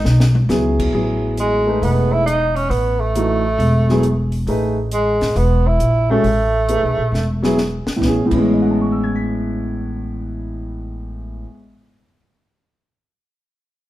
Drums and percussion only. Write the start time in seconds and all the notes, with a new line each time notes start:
0.05 snare
0.20 snare
0.35 mid tom
0.49 snare, hi-hat pedal
0.80 kick, crash
1.38 closed hi-hat
1.83 open hi-hat
2.28 closed hi-hat
2.56 open hi-hat
2.71 open hi-hat
3.15 closed hi-hat
3.60 open hi-hat
3.89 snare
4.03 closed hi-hat
4.32 open hi-hat
4.47 open hi-hat
4.91 closed hi-hat
5.21 snare, open hi-hat
5.36 open hi-hat
5.80 closed hi-hat
6.24 open hi-hat
6.69 closed hi-hat
7.14 snare
7.44 snare
7.58 snare
7.87 snare
8.02 kick, snare
8.31 kick, crash